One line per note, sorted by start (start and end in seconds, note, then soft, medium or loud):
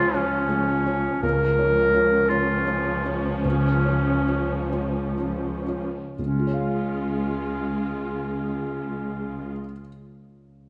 0.00 1.19 C#2 soft
0.00 1.20 C#2 soft
0.00 1.19 F3 medium
0.00 0.49 G#3 soft
0.00 1.19 C#4 medium
0.00 0.11 F4 soft
0.00 0.17 F4 medium
0.00 0.14 C#5 soft
0.13 1.23 C#4 medium
0.13 0.46 F4 soft
0.13 0.46 C#5 soft
0.49 0.82 G#3 soft
0.49 0.82 C#5 soft
0.86 1.19 F4 soft
0.86 1.19 C#5 soft
1.22 3.40 C#2 soft
1.22 5.85 C#2 soft
1.22 5.85 F3 medium
1.22 5.85 C#4 medium
1.22 2.31 A#4 medium
1.59 1.91 F3 soft
1.59 1.91 C#5 soft
1.94 2.26 F4 soft
1.94 2.26 C#5 soft
2.29 3.12 F4 medium
2.29 2.63 F4 soft
2.29 2.64 C#5 soft
2.66 3.01 F3 soft
2.66 3.01 C#5 soft
3.06 3.41 F4 soft
3.06 3.41 C#5 soft
3.45 6.14 C#2 soft
3.45 4.68 C#4 medium
3.86 4.24 F3 soft
3.86 4.24 C#5 soft
4.28 4.68 F4 soft
4.28 4.68 C#5 soft
4.73 5.14 F4 soft
4.73 5.14 C#5 soft
5.18 5.63 F3 soft
5.18 5.64 C#5 soft
5.68 6.14 F4 soft
5.68 6.15 C#5 soft
6.17 9.52 C#2 soft
6.17 9.50 G#3 soft
6.17 9.53 C#4 soft
6.17 9.50 F4 soft
6.26 9.59 C#3 soft
6.33 9.66 G#3 soft
6.39 9.72 F4 soft
6.47 9.80 C#5 soft
6.54 9.86 F5 soft